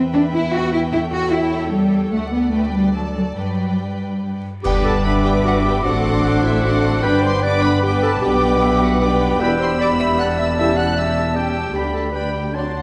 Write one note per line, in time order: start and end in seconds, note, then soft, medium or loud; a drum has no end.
0.00 2.09 E2 medium
0.00 0.90 B4 medium
0.00 0.91 E5 medium
0.00 2.09 G5 medium
0.13 0.21 D4 medium
0.34 0.54 E4 medium
0.54 0.74 F#4 loud
0.74 0.82 E4 medium
0.93 1.01 E4 medium
0.93 2.49 A4 medium
0.93 2.10 C#5 medium
1.13 1.33 F#4 loud
1.32 1.73 E4 medium
1.73 2.12 G3 loud
2.13 3.35 D2 medium
2.13 2.33 A3 medium
2.13 4.39 D5 medium
2.13 2.51 F#5 medium
2.33 2.53 B3 medium
2.53 2.73 A3 medium
2.53 2.92 B4 medium
2.53 2.92 G5 medium
2.73 2.94 G3 medium
2.95 3.03 F#3 medium
2.95 3.35 A4 medium
2.95 3.35 A5 soft
3.16 3.24 F#3 medium
3.37 4.42 G2 medium
3.37 3.79 F#3 medium
3.37 4.40 B4 soft
3.37 4.40 G5 soft
3.79 4.22 G3 medium
4.63 5.81 G1 medium
4.63 5.81 G2 medium
4.63 5.02 D3 medium
4.63 5.01 G3 medium
4.63 5.80 B3 medium
4.63 5.02 B3 medium
4.63 5.02 D4 medium
4.63 4.83 G4 medium
4.63 5.02 B4 medium
4.63 4.73 G5 medium
4.63 5.02 B5 medium
4.63 6.99 D6 medium
4.63 5.02 D6 medium
4.63 concert bass drum medium
4.63 crash medium
4.85 4.94 A4 medium
4.85 5.04 A5 medium
5.04 5.82 D3 medium
5.04 5.83 G3 medium
5.04 5.83 D4 medium
5.04 5.84 D4 medium
5.04 5.24 B4 medium
5.04 5.83 B4 medium
5.04 5.86 E5 medium
5.04 5.12 B5 medium
5.04 5.83 B5 medium
5.04 5.83 D6 medium
5.25 5.34 G4 medium
5.25 5.33 G5 medium
5.43 5.63 F#4 medium
5.43 5.54 F#5 medium
5.64 5.82 G4 medium
5.64 5.84 G5 medium
5.83 7.02 A1 medium
5.83 7.02 A2 medium
5.83 6.62 D3 medium
5.83 6.63 A3 medium
5.83 7.01 C4 medium
5.83 6.64 C4 medium
5.83 6.63 D4 medium
5.83 6.45 F#4 medium
5.83 6.63 A4 medium
5.83 6.24 D5 medium
5.83 6.43 F#5 medium
5.83 6.63 C6 medium
5.83 6.62 D6 medium
6.24 7.02 F#5 medium
6.43 6.66 E4 medium
6.43 6.63 E5 medium
6.64 7.03 D3 medium
6.64 7.04 A3 medium
6.64 7.03 C4 medium
6.64 7.03 D4 medium
6.64 7.04 D4 medium
6.64 7.02 F#4 medium
6.64 7.03 A4 medium
6.64 7.04 F#5 medium
6.64 7.03 C6 medium
6.64 7.03 D6 medium
7.03 8.23 G1 medium
7.03 8.23 G2 medium
7.03 7.42 D3 medium
7.03 7.42 G3 medium
7.03 9.42 B3 medium
7.03 7.43 B3 medium
7.03 7.43 D4 medium
7.03 7.42 D4 medium
7.03 7.23 B4 loud
7.03 7.43 B4 medium
7.03 7.42 G5 medium
7.03 7.23 B5 medium
7.03 7.43 B5 medium
7.03 9.18 D6 medium
7.03 7.43 D6 medium
7.21 7.44 C5 medium
7.21 7.43 C6 medium
7.42 7.82 D3 medium
7.42 7.82 G3 medium
7.42 7.82 B3 medium
7.42 7.82 D4 medium
7.42 7.83 D4 medium
7.42 8.20 B4 medium
7.42 7.83 B4 medium
7.42 7.64 D5 medium
7.42 7.82 B5 medium
7.42 7.82 D6 medium
7.42 7.64 D6 medium
7.62 7.83 B4 medium
7.62 7.83 B5 medium
7.83 8.02 D3 medium
7.83 8.21 G3 medium
7.83 8.21 B3 medium
7.83 8.21 D4 medium
7.83 8.22 D4 medium
7.83 7.92 G4 medium
7.83 8.22 B4 medium
7.83 8.03 G5 medium
7.83 8.22 B5 medium
7.83 8.22 D6 medium
8.02 8.22 C3 medium
8.02 8.12 A4 medium
8.02 8.23 A5 medium
8.21 9.38 B1 medium
8.21 9.00 B2 medium
8.21 9.38 B2 medium
8.21 8.99 G3 medium
8.21 9.01 B3 medium
8.21 9.00 D4 medium
8.21 8.83 G4 loud
8.21 9.00 B4 medium
8.21 8.64 D5 medium
8.21 8.83 G5 medium
8.21 9.00 B5 medium
8.21 9.00 D6 medium
8.62 9.04 E5 medium
8.81 9.01 F#4 medium
8.81 9.02 F#5 medium
9.01 9.38 B2 medium
9.01 9.38 G3 medium
9.01 9.40 B3 medium
9.01 9.40 D4 medium
9.01 9.41 G4 medium
9.01 9.40 B4 medium
9.01 9.41 D5 medium
9.01 9.42 G5 medium
9.01 9.40 B5 medium
9.01 9.40 D6 medium
9.39 11.71 E1 medium
9.39 11.71 E2 medium
9.39 9.53 B2 medium
9.39 9.54 G3 medium
9.39 11.59 G3 medium
9.39 9.55 B3 medium
9.39 10.56 B3 medium
9.39 9.54 E4 medium
9.39 10.57 G4 medium
9.39 9.61 B4 loud
9.39 9.79 G5 medium
9.39 10.56 B5 medium
9.39 9.50 B5 medium
9.39 10.56 E6 medium
9.60 9.79 C5 medium
9.60 9.70 C6 medium
9.79 9.90 D5 medium
9.79 10.18 B5 medium
9.79 9.88 D6 medium
9.99 10.21 E5 medium
9.99 10.07 E6 medium
10.19 10.38 F#5 medium
10.19 11.34 A5 medium
10.19 10.27 F#6 medium
10.39 10.48 E5 medium
10.39 10.57 E6 medium
10.58 10.72 C#3 medium
10.58 10.72 G3 medium
10.58 10.72 A3 medium
10.58 10.97 C#4 medium
10.58 10.72 E4 medium
10.58 10.97 G4 medium
10.58 10.79 E5 medium
10.58 10.96 A5 medium
10.58 11.73 A5 medium
10.58 10.96 E6 medium
10.58 10.77 E6 medium
10.77 10.96 F#5 medium
10.77 10.96 F#6 medium
10.96 11.35 C#4 soft
10.96 11.35 G4 medium
10.96 11.37 E5 medium
10.96 11.35 A5 soft
10.96 11.36 E6 medium
10.96 11.35 E6 soft
11.36 11.74 C#4 soft
11.36 11.73 G4 medium
11.36 11.74 G5 medium
11.36 11.75 G5 medium
11.36 11.74 A5 soft
11.36 11.74 E6 soft
11.74 12.82 D2 medium
11.74 12.82 D2 soft
11.74 11.89 D3 soft
11.74 11.88 G3 soft
11.74 12.11 G3 soft
11.74 11.89 B3 soft
11.74 12.12 D4 soft
11.74 11.89 D4 medium
11.74 11.83 G4 medium
11.74 12.12 G4 soft
11.74 12.13 G5 soft
11.74 11.95 G5 medium
11.74 12.13 B5 soft
11.74 12.13 B5 medium
11.74 12.12 B5 soft
11.94 12.11 A4 medium
11.94 12.03 A5 soft
12.12 12.56 G3 soft
12.12 12.53 D4 soft
12.12 12.53 G4 soft
12.12 12.31 B4 medium
12.12 12.53 G5 soft
12.12 12.56 G5 soft
12.12 12.33 B5 medium
12.12 12.53 B5 soft
12.12 12.54 B5 soft
12.32 12.54 G4 soft
12.32 12.43 G5 soft
12.53 12.69 D3 soft
12.53 12.82 F#3 soft
12.53 12.69 F#3 soft
12.53 12.69 C4 soft
12.53 12.73 D4 soft
12.53 12.82 D4 soft
12.53 12.69 D4 soft
12.53 12.82 F#4 soft
12.53 12.82 A5 soft
12.53 12.82 C6 soft
12.57 12.65 D5 soft
12.73 12.82 F#4 soft
12.73 12.82 F#5 soft